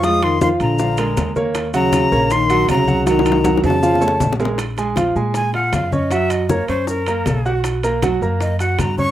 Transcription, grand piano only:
X:1
M:4/4
L:1/8
Q:1/4=158
K:Bbm
V:1 name="Grand piano"
[F,Ff]2 [F,Ff]2 [F,Ff] [A,AB]2 [B,Bd]- | [B,Bd] [G,Gg]2 [B,Bd]2 [G,Gg]2 [G,Gg] | [G,Gg]2 [G,Gg]2 [F,Ff] [=A,=A^c]2 [_A,_AB] | z [A,Aa] [F,Ff] [A,Aa]2 [Fff']2 [Ddd'] |
[G,Gg]2 [B,Bb] [Ddd']2 [B,Bb]2 [Ggg']- | [Ggg'] [B,Bb] [^F,^F^f] [B,Bb]2 [Ff^f']2 [^C^c^c'] |]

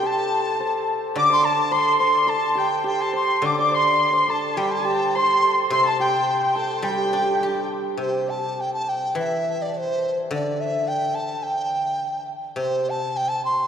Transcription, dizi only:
X:1
M:2/4
L:1/16
Q:1/4=105
K:none
V:1 name="Dizi"
a6 z2 | d' c' a2 c'2 c'2 | a2 g2 g a c'2 | d' d' c'4 a2 |
g a g2 c'3 z | c' a g4 a2 | g6 z2 | c2 a2 g a g2 |
e3 d c3 z | d2 e2 g2 a2 | g6 z2 | c2 a2 g a c'2 |]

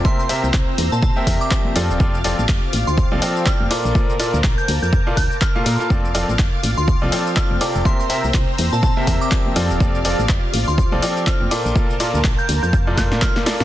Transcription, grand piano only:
X:1
M:4/4
L:1/16
Q:"Swing 16ths" 1/4=123
K:F
V:1 name="Grand piano"
[C,CGBe] z [C,CGBe] z6 [C,CGBe] [C,CGBe]2 [F,CGBe]2 [F,CFAd]2 | [F,CFAd] z [F,CFAd] z6 [F,CFAd] [F,CFAd]2 z2 [B,,B,FAd]2 | [B,,B,FAd] z [B,,B,FAd] z6 [B,,B,FAd] z3 [B,,B,FAf] [B,FAf] [B,FAf] | [F,CFAd] z [F,CFAd] z6 [F,CFAd] [F,CFAd]2 [F,CFAd]2 [C,CFAd]2 |
[C,CGBe] z [C,CGBe] z6 [C,CGBe] [C,CGBe]2 [F,G]2 [F,CFAd]2 | [F,FAd] z [F,CFAd] z6 [F,CFAd] [F,CFAd]2 z2 [B,,B,FAd]2 | [B,,B,FAd] z [B,,B,FAd] z6 [B,,B,FAd] [B,,B,FAd]2 [B,,B,F]2 [B,FAd]2 |]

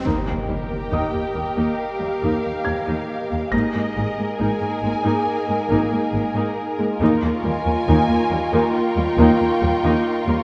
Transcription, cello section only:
X:1
M:4/4
L:1/16
Q:1/4=69
K:Eb
V:1 name="Cello section" clef=bass
E,, E,, E,, E,, E,, E,, E,, E,, z E,, E,, E,, E,, E,, z E,, | A,, A,, A,, A,, A,, A,, A,, A,, z A,, A,, A,, A,, A,, z A,, | E,, E,, E,, E,, E,, E,, E,, E,, z E,, E,, E,, E,, E,, z E,, |]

